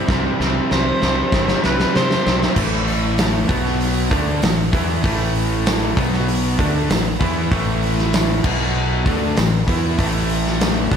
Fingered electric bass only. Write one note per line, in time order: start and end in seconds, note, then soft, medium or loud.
0.08 0.28 C2 loud
0.40 0.59 C2 loud
0.71 0.91 C2 medium
1.02 1.22 C2 medium
1.32 1.52 G1 medium
1.65 1.84 C2 medium
1.96 2.15 C3 medium
2.27 2.46 B1 medium
2.56 3.45 A1 loud
3.49 4.07 B1 medium
4.11 4.40 D2 loud
4.43 4.72 A1 medium
4.73 5.02 E2 loud
5.04 5.93 A1 loud
5.97 6.55 B1 loud
6.59 6.88 D2 loud
6.90 7.19 A1 medium
7.21 7.50 E2 loud
7.51 8.40 A1 loud
8.44 9.02 B1 medium
9.06 9.35 D2 medium
9.38 9.66 A1 medium
9.68 9.97 E2 loud
9.99 10.88 A1 loud
10.91 10.97 B1 loud